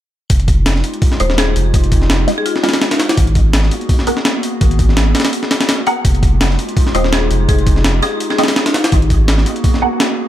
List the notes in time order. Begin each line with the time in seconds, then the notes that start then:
0.30 F1 G#3 D#4 F4 G4, kick, open hi-hat
0.40 closed hi-hat
0.48 kick, open hi-hat
0.66 snare, open hi-hat
0.76 snare
0.84 open hi-hat
0.94 closed hi-hat
1.02 kick, open hi-hat
1.12 snare
1.20 D#1 G#3 F4 G4 C5 D#5, open hi-hat
1.30 snare
1.38 G#4, snare, open hi-hat
1.56 F1, open hi-hat
1.74 F1, kick, open hi-hat
1.84 closed hi-hat
1.92 kick, open hi-hat
2.02 snare
2.10 snare, open hi-hat
2.27 G#3 F4 G4 D#5, snare, open hi-hat
2.38 G#4
2.46 F4, open hi-hat
2.56 snare
2.63 G#3 F4 G4 D#5, snare, open hi-hat
2.69 snare, open hi-hat
2.73 snare, open hi-hat
2.82 snare, open hi-hat
2.91 snare, open hi-hat
3.00 snare, open hi-hat
3.09 snare, open hi-hat
3.17 G#1 A#3 B3 F#4 G#4, kick, open hi-hat
3.27 closed hi-hat
3.35 kick, open hi-hat
3.53 snare, open hi-hat
3.63 snare
3.71 open hi-hat
3.81 closed hi-hat
3.89 kick, open hi-hat
3.99 snare
4.07 B3 G#4 A#4 F#5, open hi-hat
4.17 snare
4.25 snare, open hi-hat
4.43 open hi-hat
4.61 G#1, kick, open hi-hat
4.71 closed hi-hat
4.79 kick, open hi-hat
4.89 snare
4.97 snare, open hi-hat
5.15 snare, open hi-hat
5.20 snare, open hi-hat
5.25 snare, open hi-hat
5.33 open hi-hat
5.43 snare
5.51 snare, open hi-hat
5.61 snare, open hi-hat
5.69 snare, open hi-hat
5.87 B3 G#4 A#4 F#5, open hi-hat
6.04 F1 G#3 D#4 F4 G4, kick, open hi-hat
6.15 closed hi-hat
6.23 kick, open hi-hat
6.41 snare, open hi-hat
6.50 snare
6.59 open hi-hat
6.69 closed hi-hat
6.77 kick, open hi-hat
6.87 snare
6.94 D#1 G#3 F4 G4 C5 D#5, open hi-hat
7.04 snare
7.13 G#4, snare, open hi-hat
7.30 F1, open hi-hat
7.49 F1 G#4, kick, open hi-hat
7.59 closed hi-hat
7.67 kick, open hi-hat
7.76 snare
7.84 snare, open hi-hat
8.02 G#3 F4 G4 G#4 D#5, snare, open hi-hat
8.20 open hi-hat
8.30 G#4, snare
8.38 G#3 F4 G4 G#4 D#5, snare, open hi-hat
8.44 snare, open hi-hat
8.48 snare, open hi-hat
8.56 snare, open hi-hat
8.66 snare, open hi-hat
8.74 snare, open hi-hat
8.84 snare, open hi-hat
8.92 G#1 A#3 B3 F#4 G#4, kick, open hi-hat
9.02 closed hi-hat
9.10 kick, open hi-hat
9.28 snare, open hi-hat
9.38 snare
9.46 open hi-hat
9.56 closed hi-hat
9.64 kick, open hi-hat
9.74 snare
9.82 B3 G#4 A#4 F#5
10.00 snare, open hi-hat